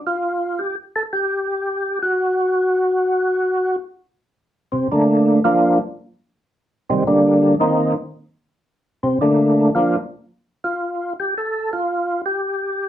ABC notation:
X:1
M:4/4
L:1/8
Q:"Swing" 1/4=112
K:Cdor
V:1 name="Tonewheel organ"
F2 G A G3 ^F- | ^F6 z2 | z [C,C] [D,A,B,D]2 [F,B,DF] z3 | z [C,E,G,C] [D,G,B,D]2 [E,B,CE] z3 |
z [C,C] [D,A,B,D]2 [F,B,DF] z2 F- | F G A F2 G3 |]